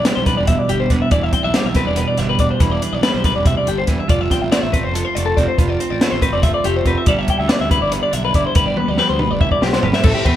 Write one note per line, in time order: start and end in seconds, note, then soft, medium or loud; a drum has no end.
0.00 1.11 E3 medium
0.00 0.27 D4 soft
0.05 0.68 G3 medium
0.05 0.15 B4 medium
0.05 snare medium
0.05 closed hi-hat medium
0.15 0.33 B1 medium
0.15 0.26 C5 medium
0.26 0.91 D4 soft
0.26 0.37 B4 medium
0.26 kick medium
0.26 closed hi-hat medium
0.37 0.55 E1 medium
0.37 0.47 D5 medium
0.47 1.09 B2 medium
0.47 0.59 E5 medium
0.47 kick medium
0.47 closed hi-hat medium
0.59 0.69 D5 medium
0.69 0.86 G1 medium
0.69 1.54 G3 medium
0.69 0.80 G4 medium
0.69 closed hi-hat medium
0.80 0.91 C5 medium
0.90 0.99 E1 medium
0.90 1.14 D4 medium
0.90 1.02 B4 medium
0.90 kick medium
0.90 closed hi-hat medium
1.02 1.11 E5 medium
1.11 1.29 E1 medium
1.11 2.60 E3 medium
1.11 1.23 D5 medium
1.11 kick medium
1.11 closed hi-hat medium
1.23 1.33 E5 medium
1.32 1.43 C4 medium
1.32 1.44 G5 medium
1.32 kick medium
1.32 closed hi-hat medium
1.43 1.52 B1 medium
1.43 1.75 D4 soft
1.43 1.56 E5 medium
1.54 2.18 G3 medium
1.54 1.66 D5 medium
1.54 snare medium
1.54 closed hi-hat medium
1.65 1.82 B1 medium
1.65 1.76 E5 medium
1.75 1.85 C4 soft
1.75 1.87 B4 medium
1.75 kick medium
1.75 snare soft
1.75 closed hi-hat medium
1.85 2.03 E1 medium
1.85 2.39 D4 soft
1.85 1.97 D5 medium
1.96 2.58 B2 medium
1.96 2.08 B4 medium
1.96 closed hi-hat medium
2.08 2.18 D5 medium
2.17 2.35 G1 medium
2.17 3.04 G3 medium
2.17 2.29 E5 medium
2.17 snare soft
2.17 closed hi-hat medium
2.29 2.40 B4 medium
2.39 2.48 E1 medium
2.39 2.63 D4 medium
2.39 2.50 D5 medium
2.39 kick medium
2.39 closed hi-hat soft
2.51 2.61 C5 medium
2.60 2.77 E1 medium
2.60 3.65 E3 medium
2.60 2.72 B4 medium
2.60 kick medium
2.60 closed hi-hat medium
2.72 2.83 D5 medium
2.82 3.25 D4 medium
2.82 2.93 B4 medium
2.82 closed hi-hat medium
2.93 3.01 B1 medium
2.93 3.03 D5 medium
3.03 4.51 G3 medium
3.03 3.14 B4 medium
3.03 snare loud
3.03 closed hi-hat medium
3.14 3.31 B1 medium
3.14 3.25 C5 medium
3.24 4.30 D4 medium
3.24 3.35 B4 medium
3.24 kick medium
3.24 snare soft
3.24 closed hi-hat medium
3.36 3.52 E1 medium
3.36 3.46 D5 medium
3.45 3.67 C3 medium
3.45 3.57 E5 medium
3.45 kick medium
3.45 closed hi-hat medium
3.57 3.67 D5 medium
3.65 3.84 G1 medium
3.65 3.87 D3 soft
3.65 3.78 G4 medium
3.65 closed hi-hat medium
3.78 3.88 C5 medium
3.87 3.97 E1 medium
3.87 4.08 E3 medium
3.87 3.99 B4 medium
3.87 kick medium
3.87 snare soft
3.87 closed hi-hat medium
3.99 4.10 E5 medium
4.08 4.27 F1 medium
4.08 4.95 F3 medium
4.08 4.21 D5 medium
4.08 kick loud
4.08 closed hi-hat medium
4.21 4.31 E5 medium
4.30 4.74 C4 medium
4.30 4.42 G5 medium
4.30 kick medium
4.30 snare soft
4.30 closed hi-hat medium
4.42 4.51 A1 medium
4.42 4.51 E5 medium
4.52 5.16 A3 medium
4.52 4.62 D5 medium
4.52 snare medium
4.52 closed hi-hat medium
4.63 4.80 A1 medium
4.63 4.73 E5 medium
4.73 5.37 C4 soft
4.73 4.84 B4 medium
4.73 kick medium
4.73 closed hi-hat medium
4.84 5.01 F1 medium
4.84 4.94 C5 medium
4.94 5.58 F3 medium
4.94 5.05 A4 medium
4.94 closed hi-hat medium
5.05 5.15 C5 medium
5.15 5.33 F1 medium
5.15 6.02 A3 medium
5.15 5.26 D5 medium
5.15 closed hi-hat medium
5.26 5.37 A4 medium
5.37 5.46 F1 medium
5.37 5.79 C4 medium
5.37 5.48 D5 medium
5.37 kick medium
5.37 closed hi-hat medium
5.48 5.58 C5 medium
5.58 5.76 F1 medium
5.58 6.43 F3 medium
5.58 5.69 B4 medium
5.58 kick loud
5.58 closed hi-hat medium
5.69 5.80 D5 medium
5.80 6.22 C4 medium
5.80 5.90 C5 medium
5.80 closed hi-hat medium
5.90 5.99 A1 medium
5.90 6.01 D5 medium
6.01 6.64 A3 medium
6.01 6.11 B4 medium
6.01 snare medium
6.01 closed hi-hat medium
6.11 6.29 A1 medium
6.11 6.22 C5 medium
6.22 6.85 C4 medium
6.22 6.33 B4 medium
6.22 kick medium
6.22 closed hi-hat medium
6.33 6.50 F1 medium
6.33 6.43 D5 medium
6.43 7.10 F3 medium
6.43 6.54 E5 medium
6.43 kick loud
6.43 closed hi-hat medium
6.54 6.65 D5 medium
6.64 6.82 F1 medium
6.64 7.07 A3 medium
6.64 6.76 G4 medium
6.64 closed hi-hat medium
6.76 6.87 C5 medium
6.86 6.94 F1 medium
6.86 7.07 C4 medium
6.86 6.97 B4 medium
6.86 kick medium
6.86 closed hi-hat medium
6.98 7.08 E5 medium
7.06 7.24 G1 medium
7.06 8.55 G3 medium
7.06 7.48 D4 medium
7.06 7.28 E4 medium
7.06 10.03 A4 medium
7.06 7.19 D5 medium
7.06 kick loud
7.06 closed hi-hat medium
7.19 7.29 E5 medium
7.28 7.70 E4 medium
7.28 7.39 G5 medium
7.28 kick medium
7.28 closed hi-hat medium
7.40 7.48 D2 medium
7.40 7.50 E5 medium
7.48 8.10 D4 medium
7.48 7.61 D5 medium
7.48 snare medium
7.48 closed hi-hat medium
7.60 7.77 D2 medium
7.60 7.71 E5 medium
7.70 8.34 E4 medium
7.70 7.82 B4 medium
7.70 kick medium
7.70 closed hi-hat medium
7.82 7.98 G1 medium
7.82 7.93 D5 medium
7.91 8.56 D3 medium
7.91 8.02 B4 medium
7.91 closed hi-hat medium
8.03 8.13 D5 medium
8.11 8.30 B1 medium
8.11 8.52 D4 medium
8.11 8.24 E5 medium
8.11 closed hi-hat medium
8.25 8.35 B4 medium
8.34 8.43 G1 loud
8.34 8.76 E4 medium
8.34 8.46 D5 medium
8.34 kick medium
8.34 closed hi-hat medium
8.46 8.56 C5 medium
8.55 8.73 G1 medium
8.55 9.81 G3 medium
8.55 8.66 B4 medium
8.55 kick loud
8.55 closed hi-hat medium
8.67 8.78 D5 medium
8.77 9.18 B4 medium
8.77 8.88 B4 medium
8.77 high tom medium
8.88 8.97 D2 medium
8.88 8.98 D5 medium
8.98 10.02 G4 medium
8.98 9.09 B4 medium
8.98 snare medium
9.09 9.26 D2 medium
9.09 9.20 C5 medium
9.19 10.02 B4 medium
9.19 9.31 B4 medium
9.19 mid tom medium
9.31 9.47 G1 medium
9.31 9.41 D5 medium
9.40 9.61 E3 medium
9.40 9.51 E5 medium
9.40 kick loud
9.51 9.62 D5 medium
9.51 kick medium
9.61 9.79 B1 medium
9.61 9.83 F3 medium
9.61 9.73 G4 medium
9.61 snare medium
9.73 9.84 C5 medium
9.73 snare medium
9.83 9.92 G1 medium
9.83 10.04 G3 medium
9.83 9.94 B4 medium
9.83 floor tom medium
9.93 10.05 E5 medium
9.93 snare medium
10.03 10.13 A1 loud
10.03 10.36 A2 medium
10.03 10.14 A4 medium
10.03 10.36 E5 medium
10.03 kick loud
10.03 crash loud
10.15 10.25 G4 medium
10.25 10.34 E2 medium
10.25 10.36 G4 medium
10.25 10.36 B4 medium
10.25 kick medium
10.25 ride medium